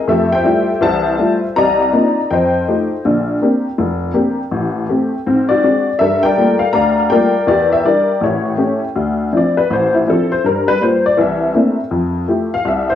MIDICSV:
0, 0, Header, 1, 2, 480
1, 0, Start_track
1, 0, Key_signature, -1, "minor"
1, 0, Tempo, 369914
1, 97, Time_signature, 4, 2, 24, 8
1, 16805, End_track
2, 0, Start_track
2, 0, Title_t, "Honky-tonk piano"
2, 0, Program_c, 0, 3
2, 94, Note_on_c, 0, 41, 67
2, 97, Note_on_c, 0, 57, 71
2, 111, Note_on_c, 0, 76, 87
2, 125, Note_on_c, 0, 69, 68
2, 134, Note_on_c, 0, 67, 67
2, 417, Note_off_c, 0, 76, 0
2, 420, Note_on_c, 0, 79, 102
2, 445, Note_on_c, 0, 72, 71
2, 450, Note_on_c, 0, 76, 74
2, 509, Note_off_c, 0, 41, 0
2, 511, Note_off_c, 0, 57, 0
2, 563, Note_on_c, 0, 55, 57
2, 577, Note_on_c, 0, 57, 50
2, 577, Note_on_c, 0, 64, 49
2, 586, Note_on_c, 0, 65, 60
2, 891, Note_off_c, 0, 55, 0
2, 898, Note_off_c, 0, 57, 0
2, 898, Note_off_c, 0, 64, 0
2, 903, Note_off_c, 0, 65, 0
2, 1020, Note_off_c, 0, 69, 0
2, 1024, Note_off_c, 0, 67, 0
2, 1047, Note_on_c, 0, 52, 73
2, 1056, Note_on_c, 0, 36, 79
2, 1070, Note_on_c, 0, 81, 96
2, 1071, Note_off_c, 0, 72, 0
2, 1072, Note_off_c, 0, 76, 0
2, 1087, Note_off_c, 0, 79, 0
2, 1090, Note_on_c, 0, 72, 69
2, 1092, Note_on_c, 0, 76, 75
2, 1466, Note_off_c, 0, 52, 0
2, 1470, Note_off_c, 0, 36, 0
2, 1532, Note_on_c, 0, 55, 56
2, 1537, Note_on_c, 0, 57, 47
2, 1541, Note_on_c, 0, 65, 61
2, 1542, Note_on_c, 0, 64, 50
2, 1796, Note_off_c, 0, 81, 0
2, 1856, Note_off_c, 0, 55, 0
2, 1858, Note_off_c, 0, 57, 0
2, 1861, Note_off_c, 0, 64, 0
2, 1861, Note_off_c, 0, 65, 0
2, 1982, Note_off_c, 0, 72, 0
2, 1983, Note_off_c, 0, 76, 0
2, 2027, Note_on_c, 0, 82, 104
2, 2029, Note_on_c, 0, 36, 68
2, 2037, Note_on_c, 0, 48, 66
2, 2051, Note_on_c, 0, 74, 74
2, 2054, Note_on_c, 0, 75, 76
2, 2437, Note_off_c, 0, 36, 0
2, 2442, Note_off_c, 0, 48, 0
2, 2498, Note_on_c, 0, 58, 52
2, 2500, Note_on_c, 0, 60, 47
2, 2502, Note_on_c, 0, 63, 49
2, 2503, Note_on_c, 0, 62, 49
2, 2512, Note_on_c, 0, 65, 58
2, 2819, Note_off_c, 0, 58, 0
2, 2820, Note_off_c, 0, 60, 0
2, 2821, Note_off_c, 0, 63, 0
2, 2822, Note_off_c, 0, 62, 0
2, 2826, Note_off_c, 0, 65, 0
2, 2943, Note_off_c, 0, 74, 0
2, 2944, Note_off_c, 0, 75, 0
2, 2991, Note_on_c, 0, 79, 84
2, 2993, Note_on_c, 0, 41, 68
2, 3012, Note_off_c, 0, 82, 0
2, 3019, Note_on_c, 0, 75, 60
2, 3021, Note_on_c, 0, 72, 65
2, 3400, Note_off_c, 0, 41, 0
2, 3477, Note_on_c, 0, 57, 51
2, 3481, Note_on_c, 0, 63, 48
2, 3484, Note_on_c, 0, 65, 48
2, 3485, Note_on_c, 0, 67, 56
2, 3716, Note_off_c, 0, 79, 0
2, 3789, Note_off_c, 0, 57, 0
2, 3791, Note_off_c, 0, 63, 0
2, 3792, Note_off_c, 0, 65, 0
2, 3793, Note_off_c, 0, 67, 0
2, 3907, Note_off_c, 0, 75, 0
2, 3908, Note_off_c, 0, 72, 0
2, 3956, Note_on_c, 0, 50, 64
2, 3960, Note_on_c, 0, 34, 66
2, 4362, Note_off_c, 0, 50, 0
2, 4364, Note_off_c, 0, 34, 0
2, 4436, Note_on_c, 0, 58, 47
2, 4440, Note_on_c, 0, 60, 47
2, 4442, Note_on_c, 0, 62, 43
2, 4448, Note_on_c, 0, 67, 54
2, 4748, Note_off_c, 0, 58, 0
2, 4751, Note_off_c, 0, 60, 0
2, 4752, Note_off_c, 0, 62, 0
2, 4755, Note_off_c, 0, 67, 0
2, 4910, Note_on_c, 0, 29, 78
2, 5319, Note_off_c, 0, 29, 0
2, 5365, Note_on_c, 0, 58, 54
2, 5371, Note_on_c, 0, 62, 48
2, 5372, Note_on_c, 0, 60, 45
2, 5379, Note_on_c, 0, 67, 60
2, 5693, Note_off_c, 0, 58, 0
2, 5696, Note_off_c, 0, 62, 0
2, 5697, Note_off_c, 0, 60, 0
2, 5700, Note_off_c, 0, 67, 0
2, 5857, Note_on_c, 0, 33, 70
2, 6272, Note_off_c, 0, 33, 0
2, 6351, Note_on_c, 0, 57, 52
2, 6351, Note_on_c, 0, 60, 50
2, 6353, Note_on_c, 0, 67, 58
2, 6666, Note_off_c, 0, 57, 0
2, 6666, Note_off_c, 0, 60, 0
2, 6668, Note_off_c, 0, 67, 0
2, 6833, Note_on_c, 0, 60, 75
2, 6834, Note_on_c, 0, 44, 69
2, 7121, Note_on_c, 0, 74, 85
2, 7143, Note_on_c, 0, 66, 67
2, 7240, Note_off_c, 0, 60, 0
2, 7241, Note_off_c, 0, 44, 0
2, 7294, Note_off_c, 0, 66, 0
2, 7310, Note_on_c, 0, 56, 54
2, 7311, Note_on_c, 0, 60, 47
2, 7313, Note_on_c, 0, 66, 54
2, 7318, Note_on_c, 0, 62, 52
2, 7626, Note_off_c, 0, 56, 0
2, 7626, Note_off_c, 0, 60, 0
2, 7628, Note_off_c, 0, 66, 0
2, 7630, Note_off_c, 0, 62, 0
2, 7773, Note_on_c, 0, 76, 91
2, 7796, Note_on_c, 0, 43, 67
2, 7798, Note_on_c, 0, 70, 67
2, 7799, Note_off_c, 0, 74, 0
2, 7805, Note_on_c, 0, 69, 66
2, 8083, Note_on_c, 0, 79, 103
2, 8089, Note_off_c, 0, 76, 0
2, 8098, Note_off_c, 0, 70, 0
2, 8113, Note_on_c, 0, 74, 68
2, 8117, Note_on_c, 0, 70, 78
2, 8202, Note_off_c, 0, 43, 0
2, 8264, Note_on_c, 0, 55, 54
2, 8273, Note_on_c, 0, 58, 47
2, 8275, Note_on_c, 0, 57, 45
2, 8276, Note_on_c, 0, 65, 57
2, 8552, Note_on_c, 0, 77, 86
2, 8578, Note_off_c, 0, 79, 0
2, 8583, Note_off_c, 0, 55, 0
2, 8588, Note_off_c, 0, 57, 0
2, 8588, Note_off_c, 0, 58, 0
2, 8589, Note_off_c, 0, 65, 0
2, 8701, Note_off_c, 0, 69, 0
2, 8730, Note_on_c, 0, 82, 101
2, 8732, Note_off_c, 0, 77, 0
2, 8736, Note_off_c, 0, 74, 0
2, 8738, Note_on_c, 0, 38, 74
2, 8751, Note_on_c, 0, 77, 69
2, 8755, Note_on_c, 0, 74, 67
2, 9008, Note_off_c, 0, 70, 0
2, 9152, Note_off_c, 0, 38, 0
2, 9210, Note_on_c, 0, 55, 54
2, 9210, Note_on_c, 0, 79, 102
2, 9214, Note_on_c, 0, 57, 46
2, 9220, Note_off_c, 0, 74, 0
2, 9222, Note_on_c, 0, 65, 54
2, 9224, Note_on_c, 0, 58, 49
2, 9230, Note_off_c, 0, 82, 0
2, 9237, Note_on_c, 0, 70, 77
2, 9240, Note_on_c, 0, 74, 75
2, 9536, Note_off_c, 0, 55, 0
2, 9538, Note_off_c, 0, 57, 0
2, 9542, Note_off_c, 0, 65, 0
2, 9543, Note_off_c, 0, 58, 0
2, 9654, Note_off_c, 0, 77, 0
2, 9661, Note_off_c, 0, 79, 0
2, 9675, Note_off_c, 0, 70, 0
2, 9677, Note_off_c, 0, 74, 0
2, 9691, Note_on_c, 0, 40, 71
2, 9694, Note_on_c, 0, 52, 70
2, 9707, Note_on_c, 0, 74, 87
2, 9725, Note_on_c, 0, 70, 65
2, 9728, Note_on_c, 0, 67, 68
2, 10016, Note_off_c, 0, 74, 0
2, 10023, Note_on_c, 0, 76, 87
2, 10109, Note_off_c, 0, 40, 0
2, 10110, Note_off_c, 0, 52, 0
2, 10178, Note_off_c, 0, 76, 0
2, 10179, Note_on_c, 0, 55, 54
2, 10184, Note_off_c, 0, 67, 0
2, 10188, Note_on_c, 0, 62, 49
2, 10191, Note_on_c, 0, 64, 59
2, 10192, Note_off_c, 0, 70, 0
2, 10193, Note_on_c, 0, 74, 81
2, 10204, Note_on_c, 0, 67, 59
2, 10211, Note_on_c, 0, 70, 57
2, 10500, Note_off_c, 0, 55, 0
2, 10505, Note_off_c, 0, 62, 0
2, 10506, Note_off_c, 0, 64, 0
2, 10633, Note_off_c, 0, 74, 0
2, 10639, Note_off_c, 0, 67, 0
2, 10643, Note_off_c, 0, 70, 0
2, 10655, Note_on_c, 0, 33, 72
2, 10687, Note_on_c, 0, 73, 72
2, 10696, Note_on_c, 0, 64, 52
2, 10698, Note_on_c, 0, 67, 52
2, 11071, Note_off_c, 0, 33, 0
2, 11120, Note_off_c, 0, 67, 0
2, 11123, Note_on_c, 0, 57, 56
2, 11129, Note_on_c, 0, 61, 46
2, 11140, Note_on_c, 0, 67, 58
2, 11405, Note_off_c, 0, 73, 0
2, 11453, Note_off_c, 0, 57, 0
2, 11456, Note_off_c, 0, 61, 0
2, 11461, Note_off_c, 0, 67, 0
2, 11586, Note_off_c, 0, 64, 0
2, 11620, Note_on_c, 0, 38, 69
2, 12033, Note_off_c, 0, 38, 0
2, 12098, Note_on_c, 0, 62, 45
2, 12100, Note_on_c, 0, 53, 49
2, 12103, Note_on_c, 0, 64, 55
2, 12105, Note_on_c, 0, 60, 48
2, 12159, Note_on_c, 0, 74, 69
2, 12420, Note_off_c, 0, 62, 0
2, 12421, Note_off_c, 0, 53, 0
2, 12422, Note_on_c, 0, 71, 76
2, 12423, Note_off_c, 0, 60, 0
2, 12423, Note_off_c, 0, 64, 0
2, 12425, Note_off_c, 0, 74, 0
2, 12585, Note_off_c, 0, 71, 0
2, 12592, Note_on_c, 0, 33, 74
2, 12625, Note_on_c, 0, 72, 84
2, 12897, Note_off_c, 0, 72, 0
2, 12900, Note_on_c, 0, 64, 64
2, 13000, Note_off_c, 0, 33, 0
2, 13053, Note_off_c, 0, 64, 0
2, 13063, Note_on_c, 0, 53, 49
2, 13068, Note_on_c, 0, 60, 49
2, 13070, Note_on_c, 0, 62, 48
2, 13073, Note_on_c, 0, 64, 57
2, 13101, Note_on_c, 0, 69, 81
2, 13376, Note_off_c, 0, 69, 0
2, 13383, Note_off_c, 0, 53, 0
2, 13385, Note_off_c, 0, 60, 0
2, 13386, Note_off_c, 0, 62, 0
2, 13388, Note_off_c, 0, 64, 0
2, 13389, Note_on_c, 0, 72, 89
2, 13548, Note_off_c, 0, 72, 0
2, 13548, Note_on_c, 0, 43, 66
2, 13574, Note_on_c, 0, 70, 78
2, 13852, Note_off_c, 0, 70, 0
2, 13859, Note_on_c, 0, 71, 92
2, 13958, Note_off_c, 0, 43, 0
2, 14023, Note_off_c, 0, 71, 0
2, 14026, Note_on_c, 0, 55, 47
2, 14032, Note_on_c, 0, 58, 49
2, 14038, Note_on_c, 0, 65, 58
2, 14045, Note_on_c, 0, 72, 77
2, 14328, Note_off_c, 0, 72, 0
2, 14344, Note_off_c, 0, 55, 0
2, 14348, Note_off_c, 0, 58, 0
2, 14351, Note_off_c, 0, 65, 0
2, 14351, Note_on_c, 0, 74, 85
2, 14497, Note_on_c, 0, 52, 76
2, 14504, Note_on_c, 0, 36, 69
2, 14509, Note_off_c, 0, 74, 0
2, 14546, Note_on_c, 0, 76, 72
2, 14913, Note_off_c, 0, 52, 0
2, 14916, Note_off_c, 0, 36, 0
2, 14979, Note_on_c, 0, 57, 52
2, 14981, Note_on_c, 0, 58, 48
2, 14983, Note_on_c, 0, 60, 48
2, 14986, Note_on_c, 0, 62, 48
2, 14986, Note_on_c, 0, 64, 54
2, 15255, Note_off_c, 0, 76, 0
2, 15301, Note_off_c, 0, 57, 0
2, 15302, Note_off_c, 0, 58, 0
2, 15303, Note_off_c, 0, 60, 0
2, 15304, Note_off_c, 0, 62, 0
2, 15305, Note_off_c, 0, 64, 0
2, 15454, Note_on_c, 0, 41, 66
2, 15871, Note_off_c, 0, 41, 0
2, 15933, Note_on_c, 0, 57, 52
2, 15939, Note_on_c, 0, 65, 43
2, 15942, Note_on_c, 0, 64, 47
2, 15949, Note_on_c, 0, 67, 57
2, 16258, Note_off_c, 0, 57, 0
2, 16261, Note_off_c, 0, 65, 0
2, 16263, Note_off_c, 0, 64, 0
2, 16266, Note_off_c, 0, 67, 0
2, 16272, Note_on_c, 0, 77, 90
2, 16415, Note_on_c, 0, 36, 74
2, 16430, Note_off_c, 0, 77, 0
2, 16457, Note_on_c, 0, 76, 79
2, 16734, Note_off_c, 0, 76, 0
2, 16738, Note_on_c, 0, 72, 89
2, 16805, Note_off_c, 0, 36, 0
2, 16805, Note_off_c, 0, 72, 0
2, 16805, End_track
0, 0, End_of_file